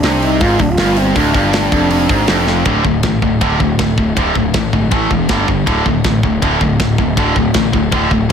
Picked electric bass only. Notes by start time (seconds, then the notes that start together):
0.04 C2
0.41 G#1
0.60 D1
0.78 G1
1.16 D1
1.35 G1
1.72 F1
2.09 G#1
2.29 F1
2.66 D1
2.85 D1
3.03 A1
3.22 D1
3.42 D1
3.60 D1
3.79 D1
3.98 D1
4.17 D1
4.36 D1
4.54 A1
4.73 G#1
4.92 A1
5.11 E1
5.30 G1
5.48 G1
5.67 D1
5.86 D1
6.05 A1
6.23 D1
6.42 D1
6.61 D1
6.80 D1
6.99 D1
7.17 D1
7.36 D1
7.55 A1
7.73 D1
7.93 D1
8.12 D1